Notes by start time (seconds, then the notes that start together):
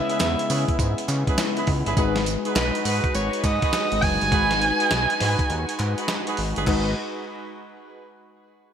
Already playing: C#3 G#3 B3 C#4 E4 B4 E5
0.10 C#4 E4 G#4 B4, closed hi-hat
0.20 E2, snare, clap, closed hi-hat, tambourine
0.39 closed hi-hat
0.49 C#3 C#4 E4 G#4 B4, open hi-hat, tambourine
0.68 kick, closed hi-hat
0.79 G#2, kick, closed hi-hat, tambourine
0.98 closed hi-hat
1.08 C#3, clap, closed hi-hat, tambourine
1.27 C#4 E4 G#4 B4, kick, closed hi-hat
1.38 G#3 C#4 E4 B4, snare, clap, closed hi-hat, tambourine
1.57 C#4 E4 G#4 B4, closed hi-hat
1.67 C#2, kick, open hi-hat
1.86 G1 C#4 E4 G#4 B4, closed hi-hat
1.96 G#1 G#3 D#4 F#4 G#4 B4, kick, closed hi-hat, tambourine
2.16 snare, closed hi-hat
2.26 closed hi-hat, tambourine
2.45 D#4 F#4 G#4 B4, closed hi-hat
2.56 B1 B4, snare, clap, closed hi-hat, tambourine
2.75 closed hi-hat
2.85 G#2 D#4 F#4 G#4 B4, open hi-hat, tambourine
3.04 kick, closed hi-hat
3.15 G#1 C#5, closed hi-hat, tambourine
3.33 closed hi-hat
3.44 G#2 D#5, kick, clap, closed hi-hat, tambourine
3.62 D#4 F#4 G#4 B4, kick, closed hi-hat
3.73 snare, clap, closed hi-hat, tambourine
3.92 G#1, closed hi-hat
4.02 F#1 G#5, kick, open hi-hat
4.21 G1, closed hi-hat
4.31 G#1 G#3 D#4 F#4 G#4 B4, kick, closed hi-hat
4.51 snare, closed hi-hat
4.62 closed hi-hat
4.80 D#4 F#4 G#4 B4, closed hi-hat
4.91 B1, snare, clap, closed hi-hat
5.10 closed hi-hat
5.20 G#2 D#4 F#4 G#4 B4, snare, open hi-hat
5.39 kick, closed hi-hat
5.50 D#2, closed hi-hat
5.69 closed hi-hat
5.79 G#2, clap, closed hi-hat
5.98 D#4 F#4 G#4 B4, closed hi-hat
6.08 snare, clap, closed hi-hat
6.27 D#4 F#4 G#4 B4, closed hi-hat
6.37 G#1, open hi-hat
6.56 G1 D#4 F#4 G#4 B4, closed hi-hat
6.66 G#1 G#3 D#4 F#4 G#4 B4, kick, clap, crash